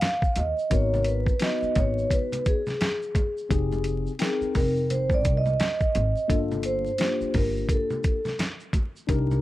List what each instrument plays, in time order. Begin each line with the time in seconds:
Already playing: vibraphone F5
0.01 snare, closed hi-hat, low conga, shaker
0.22 kick, shaker
0.36 upright bass D#2, vibraphone D#5, closed hi-hat, low conga, shaker
0.59 shaker
0.70 upright bass G#1, tine electric piano B3 D#4 F#4 A#4, vibraphone C#5, kick, closed hi-hat, shaker
0.94 high conga, shaker
1.05 vibraphone B4, closed hi-hat, shaker
1.27 kick, shaker
1.40 tine electric piano B3 D#4 F#4 B4, vibraphone D#5, snare, closed hi-hat, shaker
1.62 muted upright bass stroke, shaker
1.75 upright bass G#1, vibraphone C#5, kick, closed hi-hat, high conga, low conga, shaker
1.98 shaker
2.10 vibraphone B4, kick, closed hi-hat, high conga, shaker
2.32 closed hi-hat, high conga, shaker
2.46 vibraphone G#4, kick, closed hi-hat, shaker
2.67 snare, high conga, shaker
2.81 snare, closed hi-hat, low conga, shaker
3.02 shaker
3.15 kick, closed hi-hat, low conga, shaker
3.37 shaker
3.49 upright bass F1, tine electric piano C4 D#4 G4 G#4, kick, closed hi-hat, shaker
3.72 high conga, shaker
3.84 closed hi-hat, shaker
4.07 shaker
4.19 tine electric piano C4 D#4 A#4 G5, snare, closed hi-hat, shaker
4.23 vibraphone G#4
4.41 muted upright bass stroke, shaker
4.55 upright bass F1, vibraphone A#4, kick, open hi-hat, high conga, low conga, shaker
4.77 shaker
4.90 vibraphone C5, closed hi-hat, high conga, shaker
5.10 kick, high conga, shaker
5.14 vibraphone D5
5.24 upright bass C2, kick, closed hi-hat, shaker
5.37 vibraphone D#5
5.46 high conga, shaker
5.60 snare, closed hi-hat, low conga, shaker
5.80 kick, shaker
5.95 upright bass G#1, closed hi-hat, low conga, shaker
6.17 shaker
6.28 upright bass G1, tine electric piano A#3 D4 F4 A4, kick, closed hi-hat, shaker
6.52 high conga, shaker
6.63 vibraphone C5, closed hi-hat, shaker
6.86 shaker
6.98 tine electric piano A#3 D4 F4 G4, snare, closed hi-hat, shaker
7.21 muted upright bass stroke, shaker
7.34 upright bass G1, vibraphone A#4, kick, open hi-hat, high conga, low conga, shaker
7.57 shaker
7.69 vibraphone A4, kick, closed hi-hat, high conga, shaker
7.90 high conga, shaker
8.04 kick, closed hi-hat, shaker
8.25 snare, high conga, shaker
8.39 snare, closed hi-hat, low conga, shaker
8.60 shaker
8.73 kick, closed hi-hat, low conga, shaker
8.96 shaker
9.07 upright bass C2, tine electric piano D4 D#4 G4 A#4, kick, closed hi-hat, shaker
9.31 high conga, shaker